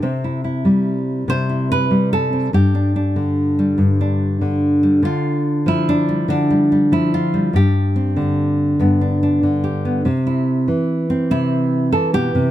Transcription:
0.00 1.27 C3 medium
0.00 2.32 C4 soft
0.00 1.29 G4 soft
0.24 0.43 E4 soft
0.44 1.48 E4 soft
0.65 1.89 G3 medium
1.28 2.48 C3 medium
1.28 1.71 C5 medium
1.49 2.49 E4 soft
1.72 2.12 B4 medium
1.91 2.49 G3 medium
2.13 2.54 A4 medium
2.33 2.49 C4 soft
2.53 3.77 G2 medium
2.53 5.05 G4 medium
2.75 2.95 D4 soft
2.96 4.00 D4 soft
3.16 4.40 D3 medium
3.59 4.82 G3 soft
3.78 4.99 G2 medium
4.01 5.05 D4 soft
4.41 5.01 D3 medium
4.83 5.04 G3 soft
5.03 6.27 D3 medium
5.03 5.88 F4 medium
5.66 6.91 F3 medium
5.66 6.72 E4 medium
5.89 6.29 D4 medium
6.09 6.49 G3 soft
6.28 7.49 D3 medium
6.28 7.13 D4 medium
6.50 6.71 G3 soft
6.72 7.33 G3 soft
6.92 7.50 F3 medium
6.92 7.55 E4 medium
7.14 7.55 F4 medium
7.34 8.80 G3 soft
7.53 8.74 G2 medium
7.53 9.63 G4 medium
7.96 8.75 C4 soft
8.16 9.42 D3 medium
8.79 10.00 G2 medium
8.79 9.84 B3 soft
9.01 9.22 D4 soft
9.23 10.01 D4 soft
9.43 10.06 D3 medium
9.64 10.00 G4 soft
9.85 10.01 B3 soft
10.05 10.68 C3 medium
10.05 11.09 C4 soft
10.27 11.29 E4 soft
10.68 11.93 E3 medium
11.10 12.51 C4 soft
11.31 11.93 C3 medium
11.31 11.92 E4 medium
11.92 12.51 E3 medium
11.92 12.14 A4 medium
12.13 12.35 B2 medium
12.13 12.51 G4 medium
12.35 12.51 C3 medium

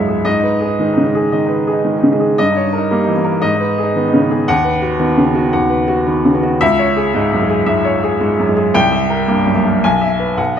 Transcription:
0.00 0.23 C#2 medium
0.00 0.28 F#2 soft
0.00 0.25 G#2 soft
0.00 0.28 G#3 medium
0.00 0.08 G#4 medium
0.00 0.28 C#5 medium
0.00 0.28 E5 medium
0.08 0.25 G#4 medium
0.25 1.27 G#2 medium
0.25 0.53 D#5 medium
0.39 0.60 D#4 medium
0.43 0.71 B4 medium
0.60 0.89 G#4 medium
0.65 0.86 D#4 soft
0.79 1.07 D#3 medium
0.79 1.00 G#3 medium
0.93 1.14 C#3 medium
0.93 1.13 D#4 medium
1.06 1.26 G#3 medium
1.15 1.42 G#4 medium
1.32 1.53 D#3 medium
1.32 1.59 D#5 medium
1.46 1.66 D#4 medium
1.46 1.76 B4 medium
1.67 1.94 G#4 medium
1.72 1.92 D#4 medium
1.84 2.12 D#3 medium
1.84 2.05 G#3 soft
1.98 2.18 D#4 medium
2.03 2.19 C#3 medium
2.13 2.32 G#3 medium
2.20 2.37 G#4 medium
2.38 3.40 G2 medium
2.38 2.65 D#5 medium
2.51 2.71 D#4 medium
2.56 2.83 C#5 medium
2.73 3.00 A#4 medium
2.78 2.98 D#4 medium
2.91 3.18 G3 medium
2.91 3.11 A#3 medium
3.04 3.24 D#4 medium
3.08 3.25 E3 medium
3.16 3.37 A#3 medium
3.24 3.42 A#4 medium
3.41 4.44 G#2 medium
3.41 3.70 D#5 medium
3.55 3.77 D#4 medium
3.60 3.88 B4 medium
3.78 4.06 G#4 medium
3.83 4.04 D#4 medium
3.96 4.24 D#3 medium
3.96 4.17 B3 medium
4.08 4.29 D#4 medium
4.14 4.31 C#3 medium
4.21 4.42 B3 medium
4.31 4.48 G#4 medium
4.48 5.51 D#2 medium
4.48 4.76 F#5 loud
4.65 4.93 B4 medium
4.82 5.11 F#4 medium
4.99 5.28 D#3 medium
4.99 5.21 B3 medium
5.17 5.35 C#3 medium
5.25 5.48 B3 medium
5.35 5.64 F#4 medium
5.53 6.57 D#2 medium
5.53 5.82 F#5 medium
5.70 5.99 B4 medium
5.88 6.17 F#4 medium
6.07 6.35 D#3 medium
6.07 6.28 B3 medium
6.25 6.43 C#3 medium
6.34 6.55 B3 medium
6.43 6.61 F#4 medium
6.61 7.64 C#2 medium
6.61 6.89 E5 loud
6.79 7.07 C#5 medium
6.96 7.24 G#4 medium
7.14 7.42 G#2 medium
7.14 7.35 G#3 medium
7.33 7.50 F#2 medium
7.42 7.62 G#3 medium
7.50 7.78 G#4 medium
7.66 7.88 G#2 medium
7.66 7.95 E5 medium
7.85 8.14 C#5 medium
8.03 8.32 G#4 medium
8.21 8.49 G#2 medium
8.21 8.42 G#3 medium
8.39 8.57 F#2 medium
8.49 8.70 G#3 medium
8.57 8.74 G#4 medium
8.74 9.80 C2 medium
8.74 9.03 G5 loud
8.92 9.21 E5 medium
9.10 9.39 A#4 medium
9.28 9.57 G2 medium
9.28 9.50 A#3 medium
9.46 9.64 F#2 medium
9.55 9.77 A#3 medium
9.65 9.83 A#4 medium
9.84 10.36 B1 medium
9.84 10.13 G#5 medium
10.01 10.31 E5 medium
10.19 10.38 B4 medium
10.37 10.60 B1 medium
10.37 10.60 F#5 medium

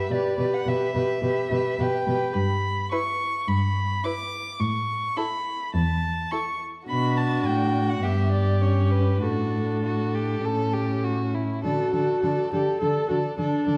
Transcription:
0.00 0.10 B4 soft
0.00 0.13 E5 medium
0.10 0.18 B2 soft
0.10 0.38 G4 soft
0.10 0.38 B4 soft
0.10 0.55 D5 medium
0.38 0.46 B2 soft
0.38 0.66 G4 soft
0.38 0.65 B4 soft
0.54 0.70 F#5 medium
0.66 0.74 B2 soft
0.66 0.94 G4 soft
0.66 0.94 B4 soft
0.66 1.82 E5 medium
0.94 1.03 B2 soft
0.94 1.22 G4 soft
0.94 1.22 B4 soft
1.22 1.30 B2 soft
1.22 1.50 G4 soft
1.22 1.50 B4 soft
1.51 1.59 B2 soft
1.51 1.79 G4 soft
1.51 1.78 B4 soft
1.79 1.87 B2 medium
1.79 2.07 G4 soft
1.79 2.06 B4 soft
1.79 2.35 G5 medium
2.07 2.15 B2 soft
2.07 2.35 G4 soft
2.07 2.35 B4 soft
2.34 2.80 G2 medium
2.34 2.91 B5 medium
2.91 3.00 E4 soft
2.91 2.99 B4 soft
2.91 3.49 C#6 medium
3.47 3.91 G2 medium
3.47 4.05 B5 medium
4.04 4.12 E4 soft
4.04 4.12 B4 soft
4.04 4.62 D6 medium
4.60 5.05 A2 medium
4.60 5.18 C#6 medium
5.17 5.25 E4 soft
5.17 5.25 A4 soft
5.17 5.74 B5 medium
5.74 6.19 E2 medium
5.74 6.33 A5 medium
6.31 6.39 E4 soft
6.31 6.40 A4 soft
6.31 6.60 C#6 medium
6.88 7.43 B2 soft
6.88 7.99 D4 soft
6.88 8.05 F#4 medium
6.88 7.19 B5 medium
7.17 7.49 A5 medium
7.47 8.03 A2 soft
7.47 7.91 G5 medium
7.89 8.05 F#5 medium
8.03 9.20 G2 soft
8.03 8.63 B3 soft
8.03 9.22 G4 soft
8.03 8.31 E5 medium
8.32 8.63 D5 medium
8.61 9.20 C#4 soft
8.61 8.93 C#5 soft
8.91 9.24 B4 medium
9.21 10.42 A2 soft
9.21 10.42 D4 soft
9.21 9.77 F#4 soft
9.21 11.05 A4 medium
9.84 10.16 F#4 soft
10.15 10.46 G4 soft
10.44 11.41 A2 soft
10.44 11.42 C#4 soft
10.44 10.75 A4 soft
10.73 11.05 G4 soft
11.04 11.36 F#4 soft
11.34 11.63 E4 soft
11.63 11.72 D3 soft
11.63 12.48 F#4 medium
11.63 11.92 A4 soft
11.63 11.93 D5 soft
11.93 12.01 D3 soft
11.93 12.22 A4 soft
11.93 12.22 D5 soft
12.22 12.31 D3 soft
12.22 12.52 A4 soft
12.22 12.51 D5 soft
12.52 12.60 D3 soft
12.52 12.80 G4 soft
12.52 12.80 A4 soft
12.52 12.81 D5 soft
12.80 12.89 D3 soft
12.80 13.08 A4 soft
12.80 13.09 A4 medium
12.80 13.09 D5 soft
13.09 13.18 D3 soft
13.09 13.17 F#4 soft
13.09 13.37 A4 soft
13.09 13.37 D5 soft
13.37 13.46 D3 soft
13.37 13.77 D4 soft
13.37 13.65 A4 soft
13.37 13.65 D5 soft
13.66 13.75 D3 soft
13.66 13.77 A4 soft
13.66 13.77 D5 soft

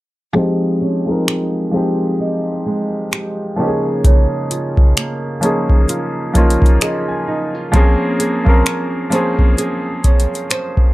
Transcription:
0.33 1.03 F3 loud
0.33 3.85 F3 medium
0.33 1.03 G#3 medium
0.33 1.04 C4 medium
0.33 1.04 D#4 medium
0.38 1.05 G4 loud
0.81 1.08 C#4 medium
1.06 1.69 F3 medium
1.06 1.70 G#3 medium
1.06 1.70 C4 medium
1.06 2.19 D#4 soft
1.06 1.71 D#4 medium
1.11 1.72 A#4 medium
1.28 2.66 G#3 medium
1.28 finger snap loud
1.71 3.48 F3 medium
1.71 3.49 G#3 medium
1.71 3.49 C4 medium
1.71 3.50 D#4 medium
1.71 3.11 G4 medium
1.76 3.51 G4 medium
2.20 3.69 D#4 medium
2.66 4.97 G#3 medium
3.12 3.69 G4 medium
3.12 finger snap loud
3.56 4.03 C#3 medium
3.56 5.33 F3 medium
3.56 5.34 A#3 medium
3.56 5.34 C#4 medium
3.56 5.35 D#4 medium
3.61 3.67 G4 medium
3.67 5.38 G#4 medium
4.04 7.74 C#3 medium
4.04 kick loud
4.04 closed hi-hat medium
4.51 5.89 F4 medium
4.51 closed hi-hat medium
4.77 kick medium
4.97 6.35 A#3 medium
4.97 finger snap loud
4.97 closed hi-hat medium
5.41 6.30 F3 medium
5.41 6.30 A#3 medium
5.41 6.31 C#4 medium
5.41 6.31 D#4 medium
5.41 6.81 G#4 medium
5.41 closed hi-hat medium
5.45 6.32 G#4 medium
5.70 kick medium
5.89 7.27 F4 medium
5.89 closed hi-hat medium
6.33 7.66 F3 medium
6.33 7.67 A#3 medium
6.33 7.73 A#3 medium
6.33 7.67 C#4 medium
6.33 7.68 D#4 medium
6.33 kick medium
6.33 closed hi-hat medium
6.38 7.68 F4 medium
6.50 closed hi-hat soft
6.62 kick medium
6.62 closed hi-hat soft
6.81 8.19 G#4 medium
6.81 7.06 D#5 medium
6.81 finger snap medium
6.81 closed hi-hat medium
7.08 7.70 G#5 medium
7.28 7.55 D#4 medium
7.55 7.84 F4 soft
7.72 8.41 F3 loud
7.72 8.42 A#3 medium
7.72 10.94 A#3 medium
7.72 8.42 C4 medium
7.72 8.43 C#4 medium
7.72 kick loud
7.72 closed hi-hat medium
7.76 8.43 G#4 loud
8.20 9.57 G#4 medium
8.20 closed hi-hat medium
8.45 9.08 F3 medium
8.45 9.08 A#3 medium
8.45 9.09 C4 medium
8.45 9.10 C#4 medium
8.45 kick medium
8.49 9.10 A#4 medium
8.66 10.04 C#4 medium
8.66 finger snap loud
8.66 closed hi-hat medium
9.10 10.87 F3 medium
9.10 10.87 A#3 medium
9.10 10.88 C4 medium
9.10 10.89 C#4 medium
9.10 10.49 C5 medium
9.10 closed hi-hat medium
9.15 10.89 G#4 medium
9.39 kick medium
9.58 10.94 G#4 medium
9.58 closed hi-hat medium
10.04 10.94 C#4 medium
10.04 kick medium
10.04 closed hi-hat medium
10.20 closed hi-hat soft
10.35 closed hi-hat soft
10.51 10.94 C5 medium
10.51 finger snap loud
10.51 closed hi-hat medium
10.77 kick medium

